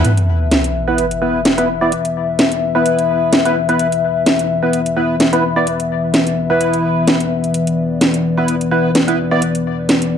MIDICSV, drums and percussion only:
0, 0, Header, 1, 2, 480
1, 0, Start_track
1, 0, Tempo, 468750
1, 46, Time_signature, 4, 2, 24, 8
1, 10423, End_track
2, 0, Start_track
2, 0, Title_t, "Drums"
2, 46, Note_on_c, 9, 42, 74
2, 149, Note_off_c, 9, 42, 0
2, 179, Note_on_c, 9, 42, 52
2, 281, Note_off_c, 9, 42, 0
2, 527, Note_on_c, 9, 38, 109
2, 527, Note_on_c, 9, 42, 75
2, 629, Note_off_c, 9, 42, 0
2, 630, Note_off_c, 9, 38, 0
2, 658, Note_on_c, 9, 42, 46
2, 760, Note_off_c, 9, 42, 0
2, 1005, Note_on_c, 9, 42, 73
2, 1108, Note_off_c, 9, 42, 0
2, 1138, Note_on_c, 9, 42, 50
2, 1241, Note_off_c, 9, 42, 0
2, 1487, Note_on_c, 9, 38, 113
2, 1487, Note_on_c, 9, 42, 74
2, 1589, Note_off_c, 9, 38, 0
2, 1589, Note_off_c, 9, 42, 0
2, 1618, Note_on_c, 9, 42, 50
2, 1720, Note_off_c, 9, 42, 0
2, 1967, Note_on_c, 9, 42, 68
2, 2069, Note_off_c, 9, 42, 0
2, 2099, Note_on_c, 9, 42, 49
2, 2201, Note_off_c, 9, 42, 0
2, 2446, Note_on_c, 9, 38, 113
2, 2446, Note_on_c, 9, 42, 73
2, 2548, Note_off_c, 9, 42, 0
2, 2549, Note_off_c, 9, 38, 0
2, 2576, Note_on_c, 9, 42, 46
2, 2679, Note_off_c, 9, 42, 0
2, 2925, Note_on_c, 9, 42, 69
2, 3027, Note_off_c, 9, 42, 0
2, 3057, Note_on_c, 9, 42, 49
2, 3160, Note_off_c, 9, 42, 0
2, 3405, Note_on_c, 9, 42, 75
2, 3406, Note_on_c, 9, 38, 116
2, 3508, Note_off_c, 9, 38, 0
2, 3508, Note_off_c, 9, 42, 0
2, 3537, Note_on_c, 9, 42, 48
2, 3639, Note_off_c, 9, 42, 0
2, 3777, Note_on_c, 9, 42, 34
2, 3879, Note_off_c, 9, 42, 0
2, 3885, Note_on_c, 9, 42, 66
2, 3987, Note_off_c, 9, 42, 0
2, 4017, Note_on_c, 9, 42, 49
2, 4120, Note_off_c, 9, 42, 0
2, 4366, Note_on_c, 9, 38, 103
2, 4366, Note_on_c, 9, 42, 67
2, 4468, Note_off_c, 9, 42, 0
2, 4469, Note_off_c, 9, 38, 0
2, 4498, Note_on_c, 9, 42, 47
2, 4601, Note_off_c, 9, 42, 0
2, 4846, Note_on_c, 9, 42, 69
2, 4949, Note_off_c, 9, 42, 0
2, 4977, Note_on_c, 9, 42, 50
2, 5080, Note_off_c, 9, 42, 0
2, 5325, Note_on_c, 9, 38, 111
2, 5325, Note_on_c, 9, 42, 71
2, 5427, Note_off_c, 9, 42, 0
2, 5428, Note_off_c, 9, 38, 0
2, 5457, Note_on_c, 9, 42, 46
2, 5559, Note_off_c, 9, 42, 0
2, 5805, Note_on_c, 9, 42, 67
2, 5908, Note_off_c, 9, 42, 0
2, 5936, Note_on_c, 9, 42, 47
2, 6039, Note_off_c, 9, 42, 0
2, 6285, Note_on_c, 9, 38, 103
2, 6285, Note_on_c, 9, 42, 67
2, 6387, Note_off_c, 9, 42, 0
2, 6388, Note_off_c, 9, 38, 0
2, 6417, Note_on_c, 9, 42, 44
2, 6519, Note_off_c, 9, 42, 0
2, 6765, Note_on_c, 9, 42, 67
2, 6867, Note_off_c, 9, 42, 0
2, 6896, Note_on_c, 9, 42, 45
2, 6999, Note_off_c, 9, 42, 0
2, 7244, Note_on_c, 9, 42, 68
2, 7245, Note_on_c, 9, 38, 105
2, 7347, Note_off_c, 9, 38, 0
2, 7347, Note_off_c, 9, 42, 0
2, 7376, Note_on_c, 9, 42, 47
2, 7479, Note_off_c, 9, 42, 0
2, 7616, Note_on_c, 9, 42, 32
2, 7719, Note_off_c, 9, 42, 0
2, 7724, Note_on_c, 9, 42, 72
2, 7826, Note_off_c, 9, 42, 0
2, 7856, Note_on_c, 9, 42, 48
2, 7958, Note_off_c, 9, 42, 0
2, 8204, Note_on_c, 9, 38, 104
2, 8204, Note_on_c, 9, 42, 68
2, 8306, Note_off_c, 9, 42, 0
2, 8307, Note_off_c, 9, 38, 0
2, 8335, Note_on_c, 9, 42, 46
2, 8438, Note_off_c, 9, 42, 0
2, 8685, Note_on_c, 9, 42, 69
2, 8788, Note_off_c, 9, 42, 0
2, 8817, Note_on_c, 9, 42, 48
2, 8920, Note_off_c, 9, 42, 0
2, 9165, Note_on_c, 9, 38, 104
2, 9165, Note_on_c, 9, 42, 70
2, 9267, Note_off_c, 9, 42, 0
2, 9268, Note_off_c, 9, 38, 0
2, 9298, Note_on_c, 9, 42, 45
2, 9401, Note_off_c, 9, 42, 0
2, 9646, Note_on_c, 9, 42, 73
2, 9748, Note_off_c, 9, 42, 0
2, 9778, Note_on_c, 9, 42, 48
2, 9880, Note_off_c, 9, 42, 0
2, 10127, Note_on_c, 9, 38, 103
2, 10127, Note_on_c, 9, 42, 70
2, 10229, Note_off_c, 9, 42, 0
2, 10230, Note_off_c, 9, 38, 0
2, 10259, Note_on_c, 9, 42, 48
2, 10361, Note_off_c, 9, 42, 0
2, 10423, End_track
0, 0, End_of_file